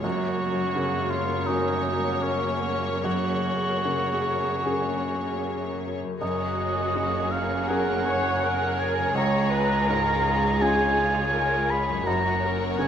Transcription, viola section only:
0.03 F#3 A#3
3.04 G#4
6.21 F#4
7.69 A#4
8.07 C#5
8.43 A#4
9.16 C#5
9.52 B4
9.89 A#4
10.26 G#4
11.34 A#4
11.70 G#4
12.07 F#4
12.42 A#4
12.78 B3

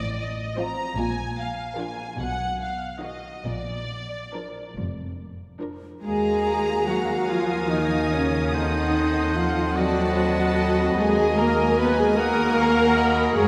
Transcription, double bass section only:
Already playing: A1
0.97 A#1
2.18 B1
3.45 A#1
4.75 F1
6.04 D#2
10.99 D#2
13.36 F#2

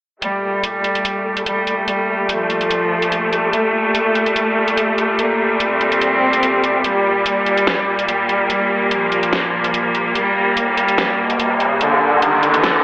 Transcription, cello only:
0.22 G3
0.63 G3
1.46 G3
1.88 G3
2.29 F3
3.53 A3
3.95 A3
4.77 A3
5.19 A#3
5.60 C4
6.84 G3
7.26 G3
8.09 G3
8.50 G3
8.91 F3
10.15 G3
10.57 G3
11.39 G3
11.81 D3
12.22 D3

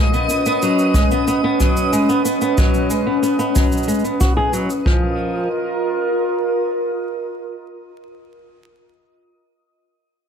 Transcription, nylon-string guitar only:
Already playing: G#3
0.14 B3
0.30 B3
0.46 B3
0.63 F#3
0.95 G#3
1.12 B3
1.28 B3
1.44 B3
1.60 F#3
1.93 G#3
2.09 B3
2.25 B3
2.42 B3
2.58 F#3
2.90 G#3
3.07 B3
3.23 B3
3.39 B3
3.55 F#3
3.88 G#3
4.04 B3
4.20 F#4
4.37 G#4
4.53 F#3
4.86 F3

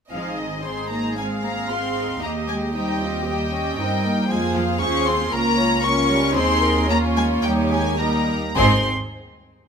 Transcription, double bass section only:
0.11 G#1
2.22 D#2
3.79 G2
4.29 F2
4.81 D#2
5.33 C#2
6.37 D#2
7.44 D#2
8.57 G#1

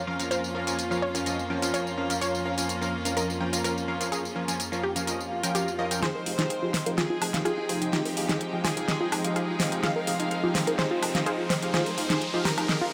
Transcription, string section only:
Already playing: F2 F3 A#3 C#4 F4
6.02 F3 G#3 C4 D#4 G5

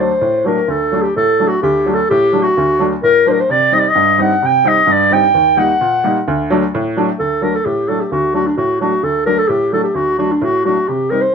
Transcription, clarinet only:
0.00 C5
0.47 A#4
0.70 A4
1.02 G4
1.17 A4
1.48 F#4
1.63 G4
1.95 A4
2.10 G4
2.43 F#4
3.04 A#4
3.28 A#4 C5
3.41 C5
3.51 D5
3.74 D#5
3.79 D5
3.89 D#5
4.22 F#5
4.46 G5
4.68 D#5
4.92 D5
5.14 G5
5.58 F#5
7.19 A4
7.43 A#4
7.55 A4
7.65 G4
7.89 A4
8.01 G4
8.12 F#4
8.35 F#4
8.47 D4
8.57 F#4
8.81 F#4
9.04 A4
9.26 A#4
9.38 A4
9.48 G4
9.73 A4
9.83 G4
9.95 F#4
10.19 F#4
10.32 D4
10.44 F#4
10.66 F#4
10.88 G4
11.10 A#4
11.22 C5

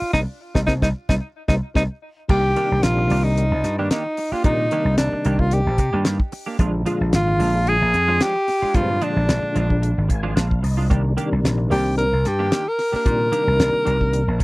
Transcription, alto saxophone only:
Already playing: F4
0.13 D#4
0.55 D#4
0.67 D#4
0.82 D#4
1.09 D#4
1.48 D#4
1.76 D#4
2.30 G4
2.83 F4
3.24 D#4
3.79 D4
3.91 D#4
4.33 F4
4.45 D#4
4.98 D4
5.40 F4
5.53 G4
7.16 F4
7.69 G#4
8.22 G4
8.76 F4
9.03 D4
11.72 G4
11.98 A#4
12.27 G4
12.69 A#4
12.96 A#4

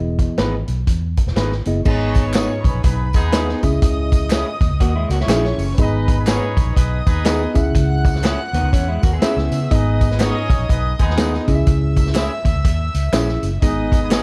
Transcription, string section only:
1.85 C#5 C#6
2.64 B4 B5
3.62 D#5 D#6
5.10 C#5 C#6
5.78 B4 B5
6.76 D#5 D#6
7.54 F#5 F#6
9.22 E5 E6
9.72 D#5 D#6
11.47 E5 E6
13.62 D#5 D#6

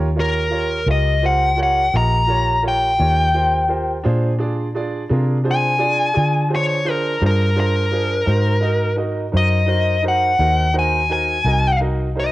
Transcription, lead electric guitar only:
0.20 A#4
0.91 D#5
1.26 F#5
1.63 F#5
1.97 A#5
2.68 G5
5.51 G#5
6.56 C#5
6.90 A#4
7.26 A#4
7.60 A#4
9.37 D#5
10.08 F#5
10.79 G#5
11.12 G#5
12.20 D#5

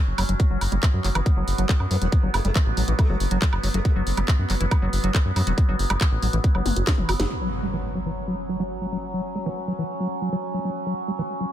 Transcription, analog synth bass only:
0.07 F#1
0.18 F#1
0.29 F#1
0.50 F#1
0.61 F#1
0.72 F#1
0.94 F#2
1.04 F#1
1.15 F#1
1.37 F#1
1.48 F#1
1.58 F#1
1.80 F#2
1.91 F#2
2.02 E1
2.23 G1
2.34 F#1
2.45 F#1
2.66 A1
2.77 A1
2.88 A1
3.09 F#1
3.20 F#1
3.31 F#1
3.53 F#1
3.63 F#1
3.74 F#1
3.96 F#1
4.07 F#1
4.17 F#1
4.39 F#2
4.50 F#1
4.61 F#1
4.82 F#1
4.93 F#1
5.04 F#1
5.25 F#2
5.36 F#2
5.47 E1
5.68 G1
5.79 F#1
5.90 F#1
6.12 A1
6.22 A1
6.33 A1
6.55 F#1
6.66 F#1
6.76 F#1
6.98 F#1
7.09 F#1
7.20 F#1

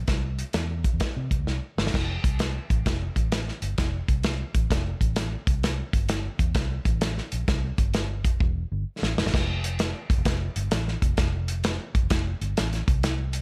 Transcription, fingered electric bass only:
0.08 C2
0.54 E2
0.93 E2
1.17 C3
1.31 C2
1.39 D2
1.47 C2
1.78 G1
1.94 F1
2.24 C2
2.70 A1
2.86 F1
3.16 A1
3.62 G1
3.78 F1
4.09 C2
4.54 A1
4.71 F1
5.01 A1
5.47 C2
5.93 G1
6.39 E2
6.55 C2
6.85 A1
7.33 A#1
7.48 C2
7.78 G1
8.24 F1
8.41 E1
8.72 G1
9.02 A1
9.18 F1
9.26 G1
9.34 F1
10.10 G1
10.18 F1
10.25 F1
10.56 G1
10.72 A1
11.02 F1
11.18 F1
11.94 G1
12.03 F1
12.11 F1
12.41 G1
12.59 A1
12.88 C2

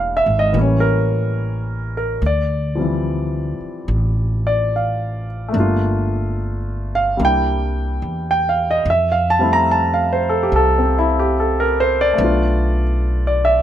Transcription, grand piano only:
Already playing: E3 G3 A#3 D4 F5
0.17 E5
0.39 D#5
0.52 E3 G3 A#3
0.58 C#4 C#5
0.80 A#4
1.97 A#4
2.26 D5
2.75 F3 G3 C4
2.81 E3
4.47 D5
4.76 F5
5.48 A3 A#3
5.55 D4
5.60 F4
6.95 F5
7.17 G3 A#3 D4
7.22 E4 G5
8.31 G5
8.49 F5
8.71 D#5
8.90 E5
9.12 F5
9.30 A5
9.39 G3 A3 C4 E4
9.53 A#5
9.71 A5
9.94 F5
10.13 C5
10.29 A4
10.43 G4
10.56 A4
10.78 C4
10.99 E4
11.19 G4
11.40 A4
11.60 A#4
11.80 C5
12.01 D5
12.13 A3 B3
12.21 D4 F4
13.27 D5
13.45 E5

